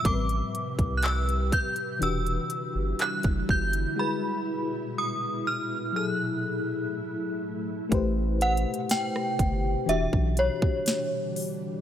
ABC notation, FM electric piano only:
X:1
M:4/4
L:1/8
Q:1/4=61
K:A
V:1 name="FM electric piano"
[A,,=G,=C^AB]4 [E,DF=G]4 | [G,FGB]4 [F,EGA]4 | [A,=GB=c]4 [E,DFG]4 |]